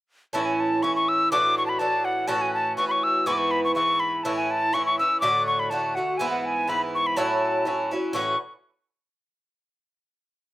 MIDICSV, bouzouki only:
0, 0, Header, 1, 2, 480
1, 0, Start_track
1, 0, Key_signature, 3, "major"
1, 0, Tempo, 487013
1, 332, Time_signature, 2, 2, 24, 8
1, 10384, End_track
2, 0, Start_track
2, 0, Title_t, "Bouzouki"
2, 0, Program_c, 0, 25
2, 326, Note_on_c, 0, 45, 73
2, 336, Note_on_c, 0, 52, 75
2, 340, Note_on_c, 0, 61, 74
2, 343, Note_on_c, 0, 64, 72
2, 802, Note_off_c, 0, 45, 0
2, 814, Note_on_c, 0, 45, 46
2, 815, Note_off_c, 0, 52, 0
2, 816, Note_off_c, 0, 61, 0
2, 819, Note_on_c, 0, 52, 42
2, 827, Note_off_c, 0, 64, 0
2, 827, Note_on_c, 0, 61, 56
2, 831, Note_on_c, 0, 64, 52
2, 1288, Note_off_c, 0, 45, 0
2, 1296, Note_off_c, 0, 52, 0
2, 1300, Note_off_c, 0, 61, 0
2, 1300, Note_on_c, 0, 45, 77
2, 1300, Note_on_c, 0, 52, 79
2, 1305, Note_off_c, 0, 64, 0
2, 1306, Note_on_c, 0, 62, 81
2, 1309, Note_on_c, 0, 66, 76
2, 1757, Note_off_c, 0, 45, 0
2, 1768, Note_on_c, 0, 45, 50
2, 1772, Note_off_c, 0, 62, 0
2, 1774, Note_off_c, 0, 52, 0
2, 1777, Note_off_c, 0, 66, 0
2, 1778, Note_on_c, 0, 52, 51
2, 1784, Note_on_c, 0, 62, 56
2, 1789, Note_on_c, 0, 66, 50
2, 2231, Note_off_c, 0, 45, 0
2, 2243, Note_on_c, 0, 45, 77
2, 2244, Note_off_c, 0, 52, 0
2, 2244, Note_off_c, 0, 66, 0
2, 2248, Note_off_c, 0, 62, 0
2, 2248, Note_on_c, 0, 52, 70
2, 2252, Note_on_c, 0, 61, 82
2, 2256, Note_on_c, 0, 66, 84
2, 2719, Note_off_c, 0, 45, 0
2, 2731, Note_on_c, 0, 45, 48
2, 2734, Note_off_c, 0, 61, 0
2, 2736, Note_off_c, 0, 52, 0
2, 2736, Note_off_c, 0, 66, 0
2, 2740, Note_on_c, 0, 52, 55
2, 2745, Note_on_c, 0, 61, 52
2, 2753, Note_on_c, 0, 66, 48
2, 3208, Note_off_c, 0, 52, 0
2, 3211, Note_off_c, 0, 45, 0
2, 3215, Note_on_c, 0, 44, 70
2, 3220, Note_on_c, 0, 52, 71
2, 3221, Note_off_c, 0, 61, 0
2, 3221, Note_off_c, 0, 66, 0
2, 3224, Note_on_c, 0, 59, 81
2, 3225, Note_on_c, 0, 64, 72
2, 3683, Note_off_c, 0, 44, 0
2, 3692, Note_off_c, 0, 52, 0
2, 3695, Note_on_c, 0, 44, 45
2, 3702, Note_off_c, 0, 59, 0
2, 3702, Note_off_c, 0, 64, 0
2, 3703, Note_on_c, 0, 52, 51
2, 3712, Note_on_c, 0, 59, 51
2, 3718, Note_on_c, 0, 64, 48
2, 4178, Note_off_c, 0, 44, 0
2, 4179, Note_off_c, 0, 52, 0
2, 4185, Note_off_c, 0, 64, 0
2, 4187, Note_off_c, 0, 59, 0
2, 4188, Note_on_c, 0, 45, 65
2, 4191, Note_on_c, 0, 52, 70
2, 4193, Note_on_c, 0, 61, 67
2, 4197, Note_on_c, 0, 64, 78
2, 4648, Note_off_c, 0, 45, 0
2, 4659, Note_off_c, 0, 52, 0
2, 4660, Note_on_c, 0, 45, 51
2, 4664, Note_off_c, 0, 61, 0
2, 4670, Note_off_c, 0, 64, 0
2, 4671, Note_on_c, 0, 52, 44
2, 4675, Note_on_c, 0, 61, 47
2, 4680, Note_on_c, 0, 64, 57
2, 4909, Note_off_c, 0, 64, 0
2, 4916, Note_off_c, 0, 45, 0
2, 4921, Note_off_c, 0, 61, 0
2, 4921, Note_on_c, 0, 64, 41
2, 4922, Note_off_c, 0, 52, 0
2, 4933, Note_on_c, 0, 61, 38
2, 4942, Note_on_c, 0, 52, 35
2, 5144, Note_off_c, 0, 64, 0
2, 5146, Note_on_c, 0, 45, 80
2, 5147, Note_off_c, 0, 52, 0
2, 5150, Note_off_c, 0, 61, 0
2, 5151, Note_on_c, 0, 50, 76
2, 5154, Note_on_c, 0, 57, 73
2, 5157, Note_on_c, 0, 66, 77
2, 5616, Note_off_c, 0, 45, 0
2, 5627, Note_off_c, 0, 50, 0
2, 5627, Note_on_c, 0, 45, 55
2, 5629, Note_off_c, 0, 57, 0
2, 5630, Note_off_c, 0, 66, 0
2, 5639, Note_on_c, 0, 50, 51
2, 5641, Note_on_c, 0, 57, 49
2, 5651, Note_on_c, 0, 66, 51
2, 5868, Note_off_c, 0, 66, 0
2, 5878, Note_off_c, 0, 57, 0
2, 5880, Note_on_c, 0, 66, 36
2, 5881, Note_off_c, 0, 45, 0
2, 5886, Note_off_c, 0, 50, 0
2, 5889, Note_on_c, 0, 57, 44
2, 5900, Note_on_c, 0, 50, 35
2, 6104, Note_off_c, 0, 66, 0
2, 6105, Note_off_c, 0, 50, 0
2, 6105, Note_on_c, 0, 44, 66
2, 6109, Note_off_c, 0, 57, 0
2, 6109, Note_on_c, 0, 52, 70
2, 6117, Note_on_c, 0, 59, 79
2, 6120, Note_on_c, 0, 64, 81
2, 6567, Note_off_c, 0, 44, 0
2, 6579, Note_on_c, 0, 44, 47
2, 6583, Note_off_c, 0, 59, 0
2, 6584, Note_off_c, 0, 52, 0
2, 6588, Note_on_c, 0, 52, 47
2, 6595, Note_on_c, 0, 59, 47
2, 6596, Note_off_c, 0, 64, 0
2, 6600, Note_on_c, 0, 64, 57
2, 7058, Note_off_c, 0, 44, 0
2, 7062, Note_on_c, 0, 45, 77
2, 7063, Note_off_c, 0, 52, 0
2, 7067, Note_on_c, 0, 54, 82
2, 7068, Note_off_c, 0, 59, 0
2, 7072, Note_on_c, 0, 61, 68
2, 7074, Note_off_c, 0, 64, 0
2, 7078, Note_on_c, 0, 64, 89
2, 7532, Note_off_c, 0, 45, 0
2, 7543, Note_on_c, 0, 45, 43
2, 7549, Note_off_c, 0, 54, 0
2, 7553, Note_on_c, 0, 54, 46
2, 7554, Note_off_c, 0, 61, 0
2, 7558, Note_on_c, 0, 61, 50
2, 7561, Note_off_c, 0, 64, 0
2, 7565, Note_on_c, 0, 64, 48
2, 7788, Note_off_c, 0, 64, 0
2, 7797, Note_off_c, 0, 61, 0
2, 7798, Note_off_c, 0, 45, 0
2, 7800, Note_on_c, 0, 64, 50
2, 7803, Note_off_c, 0, 54, 0
2, 7809, Note_on_c, 0, 61, 38
2, 7818, Note_on_c, 0, 54, 40
2, 8015, Note_on_c, 0, 45, 81
2, 8020, Note_off_c, 0, 61, 0
2, 8023, Note_off_c, 0, 54, 0
2, 8023, Note_off_c, 0, 64, 0
2, 8027, Note_on_c, 0, 52, 71
2, 8032, Note_on_c, 0, 61, 74
2, 8040, Note_on_c, 0, 66, 74
2, 8222, Note_off_c, 0, 45, 0
2, 8228, Note_off_c, 0, 52, 0
2, 8231, Note_off_c, 0, 61, 0
2, 8235, Note_off_c, 0, 66, 0
2, 10384, End_track
0, 0, End_of_file